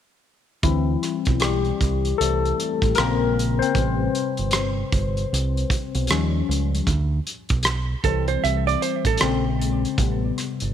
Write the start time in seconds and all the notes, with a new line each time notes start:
0.63 D2 E3 G3 C4 E4, kick, closed hi-hat
1.03 cross-stick, closed hi-hat
1.25 B1, kick, closed hi-hat
1.40 G3 G4, cross-stick, closed hi-hat
1.65 closed hi-hat
1.81 C2, kick, closed hi-hat
2.05 closed hi-hat
2.18 C2 E3 G3 A3 C4 A4, closed hi-hat
2.46 closed hi-hat
2.60 closed hi-hat
2.82 A1, kick, closed hi-hat
2.95 A#1 C#3 G#3 A#4, cross-stick, closed hi-hat
2.99 A#3 C4
3.39 closed hi-hat
3.59 C4 C5, closed hi-hat
3.75 A1 C3 G3, kick, closed hi-hat
4.15 closed hi-hat
4.37 G1, closed hi-hat
4.51 cross-stick, closed hi-hat
4.92 G1, kick, closed hi-hat
5.17 closed hi-hat
5.33 C2, closed hi-hat
5.57 closed hi-hat
5.70 kick, closed hi-hat
5.95 B1, closed hi-hat
6.07 D#2 F3 G3 C#4, cross-stick, closed hi-hat
6.49 C#2, closed hi-hat
6.75 closed hi-hat
6.87 D2, kick, closed hi-hat
7.27 closed hi-hat
7.49 B1, kick, closed hi-hat
7.63 cross-stick, closed hi-hat
8.04 C2 E3 G3 C4 A4, kick, closed hi-hat
8.28 C5, closed hi-hat
8.44 C2 E5, closed hi-hat
8.67 D5, closed hi-hat
8.82 C5, closed hi-hat
9.05 A1 A4, kick, closed hi-hat
9.18 C#3 G#3, cross-stick, closed hi-hat
9.22 A#1 C4
9.61 closed hi-hat
9.85 closed hi-hat
9.98 A1 C3 G3 B3, kick, closed hi-hat
10.38 cross-stick, closed hi-hat
10.60 G1, closed hi-hat